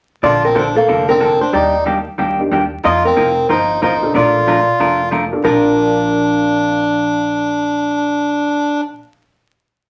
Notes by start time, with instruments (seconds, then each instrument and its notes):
0.23 upright bass A#1, hollow-body jazz guitar D3 F3 A#3 D4 A4 D5, melodica F4
0.45 melodica C4, hollow-body jazz guitar A#4
0.55 hollow-body jazz guitar D3 F3 A#3 D4 A4 C5, melodica D4
0.76 melodica A#3, hollow-body jazz guitar A4
0.88 upright bass F1, hollow-body jazz guitar D3 F3 A#3 D4 A4
1.08 honky-tonk piano A#3 C4 D4 A4, melodica C4, hollow-body jazz guitar A#4
1.20 hollow-body jazz guitar D3 F3 A#3 D4 A4
1.41 melodica D4, hollow-body jazz guitar C5
1.53 upright bass D#2, hollow-body jazz guitar D#3 G3 A#3 D4 G4 D5, melodica D#4
1.85 hollow-body jazz guitar D#3 G3 A#3 D4 G4
2.18 upright bass D2, hollow-body jazz guitar D#3 G3 A#3 D4 G4
2.39 honky-tonk piano A#3 D4 D#4 G4
2.51 upright bass D#2, hollow-body jazz guitar D#3 G3 A#3 D4 G4
2.84 upright bass F2, hollow-body jazz guitar F3 A#3 D#4 F4 A#4 D#5, melodica F4
3.05 melodica C4, hollow-body jazz guitar A#4
3.16 upright bass F1, hollow-body jazz guitar F3 A#3 D#4 F4 A#4
3.49 upright bass G1, hollow-body jazz guitar F3 A#3 D#4 F4 A#4 C5, melodica D#4
3.82 upright bass A1, hollow-body jazz guitar F3 A#3 D#4 F4 A#4 C5, melodica D#4
4.02 honky-tonk piano A#3 D4 F4 A4
4.14 upright bass A#1, hollow-body jazz guitar F3 A3 D4 F4 A#4 D5, melodica F4
4.47 hollow-body jazz guitar F3 A3 D4 F4 A#4
4.80 upright bass F1, hollow-body jazz guitar F3 A3 D4 F4 A#4
5.11 hollow-body jazz guitar F3 A3 D4 F4 A#4
5.32 honky-tonk piano A#3 D4 F4 A4
5.43 upright bass A#1, honky-tonk piano A#2 F3 C4 D4, hollow-body jazz guitar A#2 F3 D4 F4 A#4, melodica D4